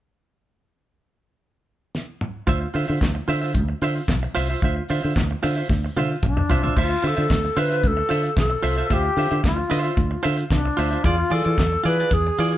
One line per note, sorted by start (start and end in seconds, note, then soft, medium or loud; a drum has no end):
1.95 snare medium
2.21 mid tom medium
2.47 2.65 D2 medium
2.47 2.67 F4 medium
2.47 2.62 C5 medium
2.47 2.61 E5 medium
2.47 kick loud
2.47 closed hi-hat medium
2.62 muted clean electric guitar stroke soft
2.73 2.84 D3 medium
2.73 2.88 F4 medium
2.73 2.87 C5 medium
2.73 2.87 E5 medium
2.73 open hi-hat medium
2.88 2.98 D3 loud
2.88 3.00 F4 soft
2.88 3.01 C5 soft
2.88 3.01 E5 medium
3.01 3.19 D2 medium
3.01 muted clean electric guitar stroke soft
3.01 kick loud
3.01 snare loud
3.01 clap medium
3.01 closed hi-hat medium
3.15 muted clean electric guitar stroke soft
3.28 3.56 D3 medium
3.28 3.43 F4 medium
3.28 3.42 C5 medium
3.28 3.40 E5 medium
3.28 open hi-hat medium
3.42 3.53 F4 soft
3.42 3.54 C5 medium
3.42 3.54 E5 medium
3.54 3.73 D2 loud
3.54 muted clean electric guitar stroke soft
3.54 kick loud
3.54 closed hi-hat medium
3.69 muted clean electric guitar stroke soft
3.82 3.99 D3 medium
3.82 4.02 F4 medium
3.82 3.96 C5 medium
3.82 3.96 E5 medium
3.82 open hi-hat medium
3.97 muted clean electric guitar stroke soft
4.08 4.26 B1 medium
4.08 muted clean electric guitar stroke soft
4.08 kick loud
4.08 snare loud
4.08 clap medium
4.08 closed hi-hat medium
4.23 muted clean electric guitar stroke medium
4.35 4.54 C2 medium
4.35 4.50 F4 medium
4.35 4.49 C5 medium
4.35 4.49 E5 medium
4.35 open hi-hat medium
4.50 4.62 F4 medium
4.50 4.63 C5 medium
4.50 4.64 E5 medium
4.62 4.80 D2 medium
4.62 4.83 F4 medium
4.62 4.77 C5 medium
4.62 4.76 E5 medium
4.62 kick loud
4.62 closed hi-hat medium
4.77 muted clean electric guitar stroke soft
4.89 4.99 D3 medium
4.89 5.04 F4 medium
4.89 5.03 C5 medium
4.89 5.02 E5 medium
4.89 open hi-hat medium
5.03 5.12 D3 loud
5.03 5.15 F4 soft
5.03 5.15 C5 soft
5.03 5.16 E5 medium
5.16 5.34 D2 medium
5.16 muted clean electric guitar stroke soft
5.16 kick loud
5.16 snare loud
5.16 clap medium
5.16 closed hi-hat medium
5.31 muted clean electric guitar stroke soft
5.43 5.61 D3 loud
5.43 5.57 F4 medium
5.43 5.57 C5 medium
5.43 5.55 E5 medium
5.43 open hi-hat medium
5.56 5.69 F4 medium
5.56 5.69 C5 medium
5.56 5.70 E5 medium
5.69 5.87 D2 loud
5.69 muted clean electric guitar stroke soft
5.69 kick loud
5.69 snare soft
5.84 muted clean electric guitar stroke soft
5.97 6.14 D3 medium
5.97 6.17 F4 medium
5.97 6.12 C5 medium
5.97 6.11 E5 medium
5.97 high tom medium
6.12 muted clean electric guitar stroke soft
6.23 6.41 B1 medium
6.23 6.81 D4 medium
6.23 muted clean electric guitar stroke soft
6.23 kick loud
6.23 mid tom medium
6.37 muted clean electric guitar stroke medium
6.37 mid tom medium
6.50 6.68 C2 medium
6.50 6.63 F4 medium
6.50 6.62 C5 medium
6.50 6.62 E5 medium
6.50 floor tom medium
6.63 6.75 F4 medium
6.63 6.76 C5 medium
6.63 6.77 E5 medium
6.63 floor tom medium
6.76 6.94 D2 medium
6.76 6.97 F4 medium
6.76 7.09 F4 medium
6.76 6.91 C5 medium
6.76 6.90 E5 medium
6.76 kick loud
6.76 crash medium
6.91 muted clean electric guitar stroke soft
7.02 7.13 D3 medium
7.02 7.17 F4 medium
7.02 7.16 C5 medium
7.02 7.15 E5 medium
7.02 open hi-hat medium
7.07 7.60 A4 loud
7.17 7.26 D3 loud
7.17 7.28 F4 soft
7.17 7.29 C5 medium
7.17 7.30 E5 medium
7.17 closed hi-hat medium
7.30 7.48 D2 medium
7.30 muted clean electric guitar stroke soft
7.30 kick loud
7.30 snare loud
7.30 clap loud
7.30 closed hi-hat medium
7.45 muted clean electric guitar stroke soft
7.57 7.85 D3 loud
7.57 7.71 F4 medium
7.57 7.89 B4 medium
7.57 7.71 C5 medium
7.57 7.69 E5 medium
7.57 open hi-hat medium
7.71 7.83 F4 medium
7.71 7.83 C5 medium
7.71 7.84 E5 medium
7.71 closed hi-hat soft
7.84 8.01 D2 loud
7.84 8.38 A4 loud
7.84 muted clean electric guitar stroke soft
7.84 kick medium
7.84 closed hi-hat medium
7.97 muted clean electric guitar stroke medium
8.09 8.28 D3 medium
8.09 8.30 F4 medium
8.09 8.24 C5 medium
8.09 8.23 E5 medium
8.09 open hi-hat medium
8.24 muted clean electric guitar stroke soft
8.24 closed hi-hat soft
8.36 8.55 B1 medium
8.36 8.85 A4 medium
8.36 muted clean electric guitar stroke soft
8.36 kick loud
8.36 snare loud
8.36 clap medium
8.36 closed hi-hat medium
8.50 muted clean electric guitar stroke soft
8.63 8.81 C2 medium
8.63 8.78 F4 medium
8.63 8.77 C5 medium
8.63 8.76 E5 medium
8.63 open hi-hat medium
8.78 8.89 F4 soft
8.78 8.90 C5 medium
8.78 8.91 E5 medium
8.78 closed hi-hat soft
8.85 8.94 A4 medium
8.90 9.09 D2 medium
8.90 9.10 F4 medium
8.90 9.45 G4 loud
8.90 9.04 C5 medium
8.90 9.03 E5 medium
8.90 kick loud
8.90 closed hi-hat medium
9.04 muted clean electric guitar stroke soft
9.17 9.26 D3 medium
9.17 9.31 F4 medium
9.17 9.30 C5 medium
9.17 9.30 E5 medium
9.17 open hi-hat medium
9.31 9.40 D3 medium
9.31 9.42 F4 soft
9.31 9.43 C5 soft
9.31 9.43 E5 medium
9.31 closed hi-hat soft
9.43 9.62 D2 medium
9.43 10.21 F4 medium
9.43 muted clean electric guitar stroke soft
9.43 kick loud
9.43 snare loud
9.43 clap loud
9.43 closed hi-hat medium
9.57 muted clean electric guitar stroke soft
9.70 9.89 D3 medium
9.70 9.84 F4 medium
9.70 9.83 C5 medium
9.70 9.82 E5 loud
9.70 open hi-hat medium
9.83 9.95 F4 medium
9.83 9.96 C5 medium
9.83 9.96 E5 medium
9.83 closed hi-hat soft
9.96 10.15 D2 loud
9.96 muted clean electric guitar stroke soft
9.96 kick loud
9.96 closed hi-hat medium
10.11 muted clean electric guitar stroke soft
10.23 10.42 D3 medium
10.23 10.44 F4 medium
10.23 10.38 C5 medium
10.23 10.36 E5 medium
10.23 open hi-hat medium
10.38 muted clean electric guitar stroke soft
10.38 closed hi-hat soft
10.50 10.69 C2 medium
10.50 11.06 D4 medium
10.50 muted clean electric guitar stroke soft
10.50 kick loud
10.50 snare loud
10.50 clap medium
10.50 closed hi-hat medium
10.65 muted clean electric guitar stroke soft
10.77 10.96 D2 medium
10.77 10.91 F4 medium
10.77 10.91 C5 medium
10.77 10.90 E5 medium
10.77 open hi-hat medium
10.91 11.03 F4 medium
10.91 11.05 C5 medium
10.91 11.05 E5 medium
10.91 closed hi-hat soft
11.04 11.22 E2 loud
11.04 11.24 F4 medium
11.04 11.34 F4 medium
11.04 11.19 G#4 medium
11.04 11.17 D5 medium
11.04 kick loud
11.04 closed hi-hat medium
11.18 muted clean electric guitar stroke soft
11.30 11.41 E3 medium
11.30 11.46 F4 medium
11.30 11.46 G#4 medium
11.30 11.85 A4 loud
11.30 11.44 D5 medium
11.30 open hi-hat medium
11.44 11.54 E3 loud
11.44 11.57 F4 medium
11.44 11.57 G#4 medium
11.44 11.58 D5 medium
11.44 closed hi-hat soft
11.58 11.76 E2 medium
11.58 muted clean electric guitar stroke soft
11.58 kick loud
11.58 snare loud
11.58 clap medium
11.58 closed hi-hat medium
11.72 muted clean electric guitar stroke soft
11.84 12.03 E3 medium
11.84 12.00 F4 medium
11.84 11.99 G#4 medium
11.84 12.15 B4 loud
11.84 11.99 D5 medium
11.84 open hi-hat medium
12.00 12.11 F4 medium
12.00 12.12 G#4 medium
12.00 12.12 D5 medium
12.00 closed hi-hat soft
12.11 12.29 E2 medium
12.11 12.58 G#4 loud
12.11 muted clean electric guitar stroke soft
12.11 kick loud
12.11 closed hi-hat medium
12.27 muted clean electric guitar stroke soft
12.38 12.56 E3 medium
12.38 12.58 F4 medium
12.38 12.54 G#4 medium
12.38 12.52 D5 medium
12.38 open hi-hat medium
12.52 muted clean electric guitar stroke soft
12.52 closed hi-hat soft